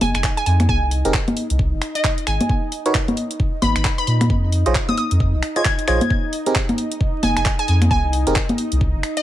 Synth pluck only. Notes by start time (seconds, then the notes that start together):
0.01 G#5
0.15 G#5
0.37 G#5
0.46 G#5
0.69 G#5
1.95 D#5
2.27 G#5
3.62 B5
3.76 B5
3.98 B5
4.07 B5
4.89 D#6
4.98 D#6
5.56 G#6
5.65 G#6
5.88 G#6
7.23 G#5
7.37 G#5
7.59 G#5
7.68 G#5
7.91 G#5
9.17 D#5